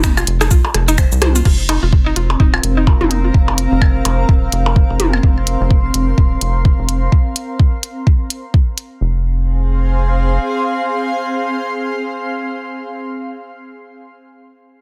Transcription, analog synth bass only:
Already playing: F1
0.27 F1
0.51 C2
0.74 F1
1.12 C2
1.45 F1
1.83 F1
2.16 F1
2.40 D#1
2.63 F1
3.01 F1
3.34 F1
3.72 F1
4.05 F1
4.29 D#1
4.52 F1
4.90 F1
5.23 F1
5.61 F1
5.94 F1
6.18 D#1
6.41 F1
6.79 F1
9.01 F1

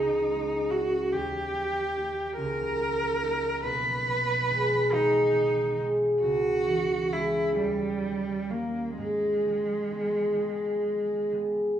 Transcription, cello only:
Already playing: D#4
0.70 F#4
1.12 G4
2.36 A#4
3.64 B4
4.93 D#4
6.21 F#4
7.13 E4
7.57 G3
8.50 A#3
8.98 G#3

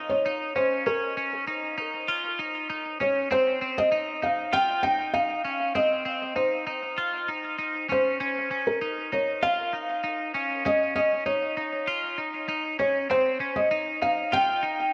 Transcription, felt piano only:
Already playing: D#5
0.10 C#5
0.56 C5
0.87 A#4
3.01 C#5
3.32 C5
3.78 D#5
4.23 F5
4.53 G5
4.83 G5
5.14 F5
5.75 D#5
6.36 C5
7.92 C5
8.67 A#4
9.13 C#5
9.43 F5
10.66 D#5
10.96 D#5
11.26 C#5
12.80 C#5
13.11 C5
13.56 D#5
14.02 F5
14.33 G5

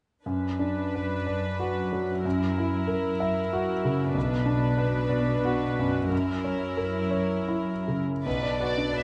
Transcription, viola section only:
0.26 D4 B4
2.24 E4 A#4
4.14 D4 B4
6.12 E4 A#4
8.26 F#3 D4

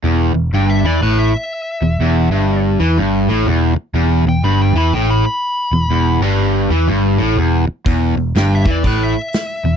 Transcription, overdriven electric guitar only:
0.04 E2
0.34 E2
0.54 G2
0.85 E3
1.03 A2
1.83 E2
2.01 E2
2.32 G2
2.80 E3
2.98 G2
3.29 A2
3.47 E2
3.76 muted overdriven electric guitar stroke
3.95 E2
4.27 E2
4.44 G2
4.75 E3
4.95 A2
5.73 E2
5.90 E2
6.22 G2
6.70 E3
6.88 G2
7.18 A2
7.38 E2
7.68 muted overdriven electric guitar stroke
7.86 E2
8.18 E2
8.36 G2
8.66 E3
8.85 A2
9.65 E2

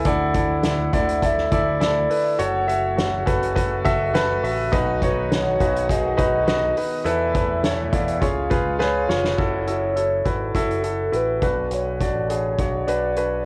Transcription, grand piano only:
0.06 D3 E4 A4 D5
0.35 E4 A4 D5
0.64 E4 A4 D5
0.93 E4 A4 D5
1.22 E4 A4 D5
1.51 E4 A4 D5
1.80 E4 A4 D5
2.09 E4 A4 B4
2.38 F#4 A4 C#5
2.67 F#4 A4 E5
2.96 F#4 A4 C#5
3.26 F#4 A4 B4
3.55 F#4 A4 B4
3.85 F#4 A4 E5
4.14 F#4 A4 B4
4.43 F#4 A4 E5
4.72 B2 D#4 F#4 B4
5.02 D#4 F#4 C#5
5.31 D#4 F#4 B4
5.60 D#4 F#4 B4
5.89 D#4 F#4 G#4
6.17 D#4 F#4 B4
6.47 D#4 F#4 B4
6.77 D#4 F#4 B4
7.04 E3 E4 A4 B4
7.35 E4 A4 B4
7.63 E4 A4 C#5
7.92 E4 A4 D5
8.21 C#3 F4 G#4 C#5
8.50 F4 G#4 B4
8.79 F4 G#4 B4
9.08 F4 G#4 C#5
9.38 E4 F#4 A4
9.67 E4 F#4 A4
9.95 E4 F#4 A4
10.25 E4 F#4 B4
10.55 E4 F#4 A4
10.83 E4 F#4 A4
11.12 E4 F#4 B4
11.42 B2 D4 F#4 B4
12.01 D4 F#4 D5
12.30 D4 F#4 G#4
12.59 D4 F#4 C#5
12.88 D4 F#4 B4
13.17 D4 F#4 B4

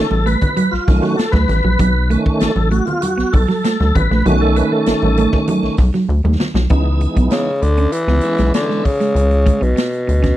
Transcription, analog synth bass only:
0.11 A1
0.73 B1
0.88 B1
1.33 D2
1.49 A1
1.64 A#1
1.80 B1
2.41 A1
2.56 A1
3.18 B1
3.34 B1
3.80 D2
3.96 A1
4.11 A#1
4.25 B1
4.87 A1
5.02 A1
5.63 B1
5.78 B1
6.09 D2
6.24 D#2
6.54 B1
6.70 C#2
7.17 B1
7.62 D2
8.08 C#2
8.39 B1
9.15 C#2
9.62 B1
10.08 D2

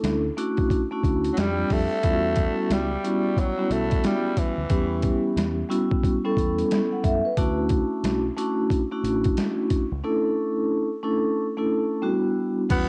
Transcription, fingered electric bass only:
0.03 D2
1.03 D2
1.37 F2
1.70 F2
2.04 E2
2.70 C#2
3.70 B1
4.58 D2
4.70 E2
5.36 E2
6.37 E2
7.04 F#2
7.37 D2
8.03 B1
9.03 A1
9.92 C#2
12.70 E2

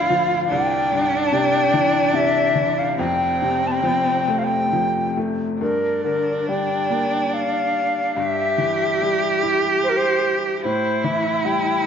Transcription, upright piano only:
Already playing: D1 D2 A2 D3 F3
0.10 F3
0.51 C2
0.92 G2
1.32 C3
1.74 E3
2.13 C3
2.56 E3
2.99 F1 F2
3.42 C3
3.83 F3
4.28 A3
4.73 F3
5.17 A3
5.61 G2
6.04 D3
6.49 G3
6.90 A#3
8.16 G2
8.58 E3
9.02 G3
9.43 E4
10.65 A2
11.04 E3
11.45 G3

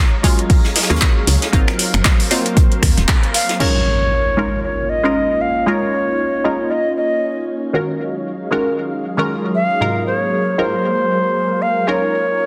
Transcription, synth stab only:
Already playing: F#3 G#3 A#3 C#4 F4
0.23 F#3 G#3 A#3 C#4 F4
0.90 F#3 G#3 A#3 C#4 F4
1.52 F#3 A#3 C4 D#4 F4
2.30 F#3 A#3 C4 D#4 F4
3.59 G#3 C#4 D#4 F4 A#4
4.37 G#3 C#4 D#4 F4 A#4
5.03 G#3 C#4 D#4 F4 A#4
5.66 G#3 C#4 D#4 F4 A#4
6.44 G#3 C#4 D#4 F4 A#4
7.73 D#3 G#3 C#4 F4 F#4 A#4
8.51 D#3 G#3 C#4 F4 F#4 A#4
9.17 D#3 G#3 C#4 F4 F#4 A#4
9.80 G#2 C3 F#3 D#4 F4 A#4
10.58 G#2 F#3 C4 D#4 F4 A#4
11.87 G#3 C#4 D#4 F4 A#4

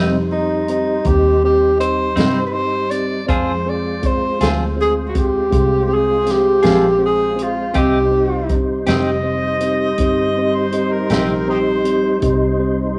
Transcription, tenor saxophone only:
0.32 D#4
0.70 D#4
1.06 G4
1.45 G4
1.80 C5
2.46 B4
2.54 C5
2.90 D5
3.28 C5
3.69 D5
4.06 C5
4.81 G#4
5.08 F#4
5.18 G4
5.94 G#4
6.32 G4
7.05 G#4
7.43 F4
7.78 G4

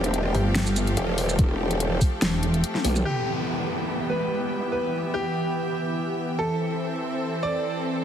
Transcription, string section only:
Already playing: C4 G4 A4 D5 F5 G5
3.05 B3
3.22 E5
3.31 G4
6.39 C4
6.44 A4
7.11 A5

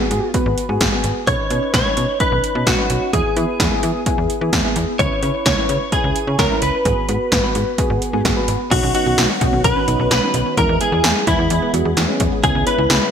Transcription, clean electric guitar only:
Already playing: G#4
1.27 C#5
1.74 C#5
2.20 B4
2.67 F#4
3.13 G#4
4.99 C#5
5.46 C#5
5.93 G#4
6.39 A#4
6.62 B4
8.71 F#4
8.95 F#4
9.64 B4
10.11 B4
10.58 A#4
10.81 G#4
11.27 E4
12.44 G#4
12.67 B4

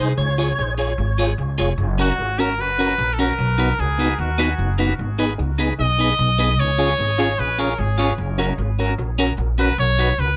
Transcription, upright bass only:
0.00 C2
0.17 C#2
0.59 A#1
0.98 G#1
1.38 C#2
1.59 F1
1.78 F#1
2.18 G#1
2.58 F#1
2.98 A#1
3.39 B1
3.79 C#2
4.18 D#2
4.58 F#1
4.99 G#1
5.39 C#2
5.79 B1
6.19 B1
6.58 C#2
6.98 G#1
7.38 A#1
7.78 G#1
8.18 F#1
8.58 G#1
8.98 A#1
9.38 A#1
9.78 B1
10.18 C#2

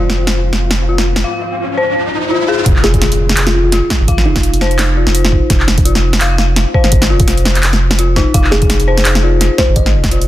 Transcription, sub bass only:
Already playing: F1
2.66 F1
3.37 F1
4.00 G#1
4.26 F1
5.07 F1
5.50 F1
6.21 F1
6.84 G#1
7.10 F1
7.91 F1
8.34 F1
9.05 F1
9.69 G#1
9.94 F1

